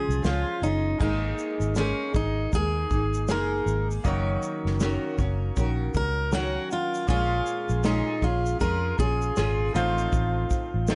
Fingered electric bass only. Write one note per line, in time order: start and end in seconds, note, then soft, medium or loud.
0.09 0.22 C2 medium
0.24 0.43 C#2 medium
0.62 0.94 F#1 medium
1.01 1.32 G#1 medium
1.60 1.92 G#1 medium
2.14 2.46 G#1 medium
2.53 2.84 D#2 medium
2.90 3.28 G#1 medium
3.28 3.60 F#1 medium
3.66 3.98 G#1 medium
4.05 4.36 F#1 loud
4.65 4.96 F#1 medium
5.18 5.50 F#1 medium
5.57 5.88 A#1 medium
5.95 6.57 C#2 medium
7.09 7.40 A#1 loud
7.70 8.01 A#1 medium
8.22 8.54 A#1 loud
8.61 8.92 F2 medium
8.99 9.30 A#1 medium
9.37 9.68 G#1 medium
9.75 10.06 A1 loud
10.13 10.44 A1 loud
10.74 10.95 A1 medium